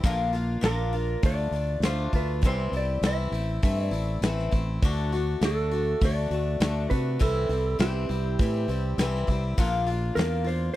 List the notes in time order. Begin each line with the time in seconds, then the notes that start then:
0.03 A#1 A#2 D3 A#3 D4 F4, kick, open hi-hat
0.33 A#3 D4 F4, snare, open hi-hat
0.61 A#1 A#2 D3 A#3 D4 F4, snare, open hi-hat
0.65 A#4
0.93 A#3 D4 F4, open hi-hat
1.23 D2 D3 A3 D4 F4 D5, kick, open hi-hat
1.51 D2 D4 F4, open hi-hat
1.56 A3
1.80 D2 D3, snare, open hi-hat
1.85 A3 D4 F4 C5
2.13 D2 A3 D4 F4 B4, kick, open hi-hat
2.42 C2 C3 E3 G3 C4, kick, open hi-hat
2.46 E4 C5
2.72 C2 E4, open hi-hat
2.76 G3 C4 D5
3.01 C2 C3 E3 G3 C4 E4, snare, open hi-hat
3.06 E5
3.32 A1 A3 C4 E4, open hi-hat
3.63 G2 E3 A3 C4 E4, kick, open hi-hat
3.84 D5
3.91 A1 C4 E4, open hi-hat
3.95 A3
4.21 A1 A2 E3 A3 C4 E4, snare, open hi-hat
4.39 snare
4.51 A1 A3 C4 E4, kick, open hi-hat
4.82 D2 D3 A3 D4 F#4, kick, open hi-hat
5.12 A3 D4 F#4, snare, open hi-hat
5.41 D2 D3 A3 D4 F#4, snare, open hi-hat
5.45 A4
5.71 A3 D4 F#4, open hi-hat
6.01 D2 D3 A3 D4 F#4, kick, open hi-hat
6.05 D5
6.30 D2 A3 D4 F#4, open hi-hat
6.60 D2 D3 A3 D4 F#4, snare, open hi-hat
6.90 C3 A3 D4 F#4 B4, kick, open hi-hat
7.19 C2 C3 E3 G3 C4 E4 A4, kick, open hi-hat
7.49 C2 G3 C4 E4, open hi-hat
7.79 C2 C3 E3 G3 C4 E4 G4, snare, open hi-hat
8.09 C2 G3 C4 E4, open hi-hat
8.39 A2 E3 G3 C4 E4, kick, open hi-hat
8.68 C2 G3 C4 E4, open hi-hat
8.98 C2 C3 E3 G3 C4 E4, snare, open hi-hat
9.15 snare
9.27 C2 G3 C4 E4, kick, open hi-hat
9.58 A#1 A#2 D3 A#3 D4 F4, kick, open hi-hat
9.87 A#3 D4 F4, open hi-hat
10.15 E2 A#2 D3 A#3 D4 F4 A#4, snare, open hi-hat
10.44 A#3 D4 F4 C5
10.48 open hi-hat